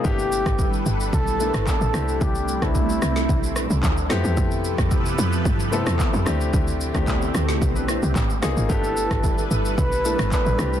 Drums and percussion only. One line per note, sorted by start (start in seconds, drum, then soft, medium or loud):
0.05 kick loud
0.05 shaker medium
0.19 shaker medium
0.32 shaker medium
0.46 kick medium
0.46 cross-stick medium
0.46 shaker soft
0.59 kick loud
0.59 shaker medium
0.73 shaker medium
0.86 shaker medium
1.00 shaker medium
1.13 kick loud
1.13 shaker medium
1.27 shaker medium
1.40 shaker loud
1.54 cross-stick loud
1.54 shaker medium
1.67 kick medium
1.67 clap medium
1.67 shaker medium
1.81 shaker soft
1.94 cross-stick medium
1.94 shaker medium
2.08 shaker soft
2.21 kick loud
2.21 shaker medium
2.35 shaker medium
2.48 shaker medium
2.62 kick medium
2.62 cross-stick medium
2.62 shaker soft
2.75 kick loud
2.75 shaker medium
2.89 shaker medium
3.02 cross-stick medium
3.02 shaker medium
3.16 snare medium
3.16 shaker medium
3.29 kick loud
3.29 shaker medium
3.43 shaker medium
3.56 cross-stick medium
3.56 shaker loud
3.70 shaker medium
3.83 kick medium
3.83 clap medium
3.83 shaker medium
3.97 shaker soft
4.10 cross-stick medium
4.10 snare medium
4.10 shaker loud
4.24 shaker soft
4.37 kick loud
4.37 shaker medium
4.51 shaker medium
4.64 shaker medium
4.78 kick medium
4.78 cross-stick medium
4.78 shaker soft
4.91 kick loud
4.91 shaker medium
5.06 shaker medium
5.18 shaker medium
5.33 shaker soft
5.45 kick loud
5.45 shaker medium
5.60 shaker medium
5.73 shaker loud
5.87 cross-stick loud
5.87 shaker medium
5.99 kick loud
5.99 clap medium
5.99 shaker medium
6.14 shaker soft
6.26 cross-stick medium
6.26 shaker loud
6.41 shaker soft
6.53 kick loud
6.53 shaker medium
6.68 shaker medium
6.81 shaker medium
6.95 kick medium
6.95 cross-stick medium
6.95 shaker soft
7.07 kick loud
7.07 clap loud
7.07 shaker medium
7.22 shaker medium
7.35 cross-stick medium
7.35 shaker medium
7.49 snare medium
7.49 shaker medium
7.62 kick loud
7.62 shaker medium
7.76 shaker medium
7.88 cross-stick medium
7.88 shaker loud
8.03 shaker medium
8.16 kick medium
8.16 clap medium
8.16 shaker medium
8.30 shaker soft
8.43 cross-stick medium
8.43 snare medium
8.43 shaker loud
8.57 shaker soft
8.70 kick loud
8.70 shaker medium
8.84 shaker medium
8.97 shaker medium
9.11 kick medium
9.11 cross-stick medium
9.11 shaker soft
9.24 kick loud
9.24 shaker medium
9.38 shaker medium
9.51 shaker medium
9.65 shaker soft
9.78 kick loud
9.78 shaker medium
9.92 shaker medium
10.05 shaker loud
10.19 cross-stick loud
10.19 shaker medium
10.32 kick medium
10.32 clap medium
10.32 shaker medium
10.46 shaker soft
10.59 cross-stick medium
10.59 shaker medium
10.73 shaker soft